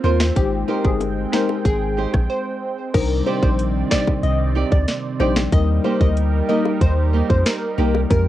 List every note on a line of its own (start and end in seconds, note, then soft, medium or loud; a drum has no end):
0.00 0.34 A#3 medium
0.00 2.90 C4 medium
0.00 0.34 C4 medium
0.00 0.34 F4 medium
0.00 0.26 F4 medium
0.00 0.15 C5 medium
0.00 low bongo medium
0.04 0.31 D#2 medium
0.04 0.34 F4 medium
0.04 0.26 A#4 medium
0.04 0.34 C5 medium
0.04 0.26 C5 loud
0.20 finger snap medium
0.20 snare loud
0.20 high bongo medium
0.36 0.64 G#1 loud
0.36 0.81 G#3 medium
0.36 2.92 G#3 medium
0.36 0.81 D#4 medium
0.36 0.47 G4 loud
0.36 0.81 G4 medium
0.36 0.81 C5 loud
0.36 2.92 G5 medium
0.36 kick loud
0.36 closed hi-hat medium
0.68 0.90 D#4 medium
0.68 0.90 G4 medium
0.68 0.79 A#4 medium
0.68 0.91 C5 medium
0.68 high bongo medium
0.84 1.26 G1 medium
0.84 1.29 G#3 medium
0.84 1.29 D#4 medium
0.84 1.29 G4 medium
0.84 0.95 G#4 medium
0.84 1.29 C5 medium
0.84 kick loud
1.01 closed hi-hat medium
1.01 high bongo medium
1.33 1.63 G#3 medium
1.33 1.55 D#4 medium
1.33 1.63 D#4 medium
1.33 1.63 G4 medium
1.33 1.55 G4 medium
1.33 1.44 A#4 medium
1.33 1.63 C5 medium
1.33 1.55 C5 medium
1.33 finger snap medium
1.33 snare loud
1.33 low bongo medium
1.49 high bongo medium
1.65 2.06 G#1 loud
1.65 2.11 G#4 loud
1.65 kick loud
1.65 closed hi-hat medium
1.97 2.19 D#4 medium
1.97 2.13 G4 medium
1.97 2.12 C5 loud
2.13 2.27 A#1 loud
2.13 muted nylon-string guitar stroke soft
2.13 kick medium
2.13 cross-stick medium
2.13 high bongo medium
2.30 2.75 C5 medium
2.94 3.22 C2 loud
2.94 5.50 C3 medium
2.94 5.50 D#3 medium
2.94 3.39 G3 loud
2.94 5.50 C4 medium
2.94 3.39 D4 medium
2.94 3.39 D#4 medium
2.94 3.05 A#4 loud
2.94 3.39 C5 loud
2.94 5.50 D5 medium
2.94 kick loud
2.94 closed hi-hat medium
2.94 crash loud
3.26 3.48 D#4 medium
3.26 3.48 G4 medium
3.26 3.37 C5 medium
3.26 3.49 D5 loud
3.26 high bongo medium
3.42 3.84 A#1 loud
3.42 3.87 G3 medium
3.42 3.87 D4 medium
3.42 3.87 D#4 medium
3.42 3.53 C5 medium
3.42 3.87 C5 medium
3.42 kick loud
3.59 closed hi-hat medium
3.91 4.21 G3 medium
3.91 4.21 D4 medium
3.91 4.13 D#4 medium
3.91 4.21 D#4 medium
3.91 4.13 G4 medium
3.91 4.21 C5 medium
3.91 4.02 D5 medium
3.91 4.13 D5 medium
3.91 finger snap medium
3.91 kick medium
3.91 snare loud
3.91 low bongo medium
4.07 kick medium
4.07 high bongo medium
4.23 4.64 C2 loud
4.23 4.34 D#5 medium
4.23 closed hi-hat medium
4.55 4.77 D#4 medium
4.55 4.78 G4 medium
4.55 4.78 D5 loud
4.72 4.86 D2 medium
4.72 4.82 D5 medium
4.72 kick medium
4.72 high bongo medium
4.88 snare medium
4.88 closed hi-hat medium
5.20 5.47 A#1 medium
5.20 5.50 G3 medium
5.20 5.50 D4 medium
5.20 5.42 D#4 medium
5.20 5.50 D#4 medium
5.20 5.42 G4 loud
5.20 5.31 C5 medium
5.20 5.50 C5 medium
5.20 5.42 D5 loud
5.20 low bongo medium
5.36 finger snap medium
5.36 snare loud
5.36 high bongo medium
5.52 5.80 D#2 loud
5.52 5.97 G3 loud
5.52 8.08 G3 medium
5.52 5.97 A#3 medium
5.52 8.08 D#4 medium
5.52 5.97 D#4 medium
5.52 8.08 G4 medium
5.52 8.08 A#4 medium
5.52 5.97 A#4 loud
5.52 5.63 D#5 loud
5.52 kick loud
5.52 closed hi-hat medium
5.84 6.06 A#3 medium
5.84 6.07 D#4 medium
5.84 6.07 G4 medium
5.84 5.95 C5 medium
5.84 high bongo medium
6.00 6.42 D2 medium
6.00 6.45 G3 medium
6.00 6.45 A#3 medium
6.00 6.45 D#4 medium
6.00 6.45 A#4 medium
6.00 6.11 D#5 medium
6.00 kick medium
6.17 closed hi-hat medium
6.49 6.79 G3 medium
6.49 6.71 A#3 medium
6.49 6.79 A#3 medium
6.49 6.79 D#4 medium
6.49 6.71 D#4 medium
6.49 6.71 G4 medium
6.49 6.79 A#4 medium
6.49 6.60 D#5 medium
6.49 low bongo medium
6.65 high bongo medium
6.81 7.22 D#2 loud
6.81 6.92 C5 medium
6.81 kick loud
6.81 closed hi-hat medium
7.13 7.35 A#3 medium
7.13 7.29 D#4 medium
7.13 7.28 G4 medium
7.30 7.44 F2 medium
7.30 7.40 C5 medium
7.30 muted nylon-string guitar stroke medium
7.30 kick medium
7.30 high bongo medium
7.46 7.91 A#4 medium
7.46 finger snap medium
7.46 snare loud
7.46 closed hi-hat medium
7.78 8.05 C2 loud
7.78 8.08 G3 medium
7.78 8.00 A#3 medium
7.78 8.08 A#3 medium
7.78 8.08 D#4 medium
7.78 8.00 D#4 medium
7.78 8.00 G4 loud
7.78 8.08 A#4 medium
7.78 low bongo medium
7.94 high bongo medium
8.10 8.28 F2 loud
8.10 8.28 F3 medium
8.10 8.28 G#3 medium
8.10 8.28 C4 medium
8.10 8.28 G4 medium
8.10 8.28 G4 loud
8.10 8.21 A#4 loud
8.10 kick loud
8.10 closed hi-hat medium